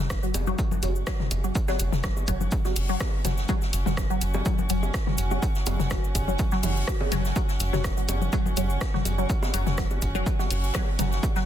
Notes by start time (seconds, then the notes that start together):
Already playing: C#4
0.00 F#1 F#4
0.08 F#5, kick, cross-stick, snare, cabasa, shaker
0.23 F#3, closed hi-hat, cabasa
0.34 F#1, closed hi-hat, high bongo, cabasa, shaker
0.39 C#6
0.47 F#3, low conga, cabasa
0.58 kick, cabasa, shaker
0.71 low conga, cabasa
0.83 F#1 F#3, closed hi-hat, high bongo, cabasa, shaker
0.95 cabasa
1.07 F#3, kick, cross-stick, snare, cabasa, shaker
1.20 snare, high tom
1.31 F#1, closed hi-hat, high bongo, cabasa, shaker
1.44 F#3, cabasa
1.55 kick, cabasa, shaker
1.68 F#3, snare, high bongo, cabasa
1.79 F#1, closed hi-hat, cabasa, shaker
1.92 F#1, snare, high tom, cabasa
2.03 F#3, kick, cross-stick, snare, cabasa, shaker
2.17 high bongo, cabasa
2.27 F#1 F#3, kick, closed hi-hat, cabasa, shaker
2.41 low conga, cabasa
2.51 kick, cabasa, shaker
2.65 F#3, snare, high bongo, cabasa
2.75 F#1, closed hi-hat, open hi-hat, cabasa
2.89 F#3, cabasa
3.00 kick, cross-stick, snare, high bongo, cabasa, shaker
3.24 F#1 F#3, snare, closed hi-hat, high tom, low conga, cabasa, shaker
3.37 snare, cabasa
3.49 F#3, kick, high bongo, cabasa, shaker
3.61 snare, cabasa
3.73 F#1, snare, closed hi-hat, cabasa, shaker
3.86 F#1 F#3, snare, high tom, cabasa
3.97 kick, cross-stick, snare, high bongo, cabasa, shaker
4.10 F#3, closed hi-hat, cabasa
4.21 F#1, closed hi-hat, cabasa, shaker
4.34 high bongo, low conga, cabasa
4.45 F#3, kick, cabasa, shaker
4.58 low conga, cabasa
4.69 F#1 F#3, closed hi-hat, cabasa, shaker
4.83 high bongo, cabasa
4.94 kick, cross-stick, snare, cabasa, shaker
5.07 F#3, snare, high tom
5.18 F#1, closed hi-hat, cabasa, shaker
5.31 F#3, high bongo, cabasa
5.42 kick, cabasa, shaker
5.55 snare, cabasa
5.66 F#1 F#3, closed hi-hat, high bongo, cabasa, shaker
5.79 F#1, snare, high tom, cabasa
5.90 F#3, kick, cross-stick, snare, cabasa, shaker
6.04 cabasa
6.15 F#1, kick, closed hi-hat, high bongo, cabasa, shaker
6.28 F#3, low conga, cabasa
6.39 kick, cabasa, shaker
6.51 F#3, snare, cabasa
6.63 F#1 E3, closed hi-hat, open hi-hat, high bongo, cabasa
6.77 cabasa
6.87 F#4, kick, cross-stick, snare, cabasa, shaker
7.00 C#3, high bongo
7.11 F#1 F#3, snare, closed hi-hat, high tom, low conga, cabasa, shaker
7.25 snare, cabasa
7.36 F#3, kick, cabasa, shaker
7.49 snare, cabasa
7.60 F#1, snare, closed hi-hat, cabasa, shaker
7.73 F#1 F#3, snare, high tom, high bongo, cabasa
7.84 kick, cross-stick, snare, cabasa, shaker
7.97 F#3, closed hi-hat, cabasa
8.08 F#1, closed hi-hat, high bongo, cabasa, shaker
8.22 low conga, cabasa
8.32 F#3, kick, cabasa, shaker
8.46 low conga, cabasa
8.56 F#1 F#3, closed hi-hat, high bongo, cabasa, shaker
8.70 cabasa
8.81 kick, cross-stick, snare, cabasa, shaker
8.94 F#3, snare, high tom
9.05 F#1, closed hi-hat, high bongo, cabasa, shaker
9.18 F#3, cabasa
9.29 kick, cabasa, shaker
9.43 snare, high bongo, cabasa
9.54 F#1 F#3, closed hi-hat, cabasa, shaker
9.67 F#1, snare, high tom, cabasa
9.77 F#3, kick, cross-stick, snare, cabasa, shaker
9.90 high bongo, cabasa
10.02 F#1, kick, closed hi-hat, cabasa, shaker
10.15 F#3, low conga, cabasa
10.26 kick, cabasa, shaker
10.39 F#3, snare, high bongo, cabasa
10.51 F#1, closed hi-hat, open hi-hat, cabasa
10.64 cabasa
10.73 F#3, kick, cross-stick, snare, high bongo, cabasa, shaker
10.99 F#1 F#3, snare, closed hi-hat, high tom, low conga, cabasa, shaker
11.12 snare, cabasa
11.23 kick, high bongo, cabasa, shaker
11.36 F#3, snare, cabasa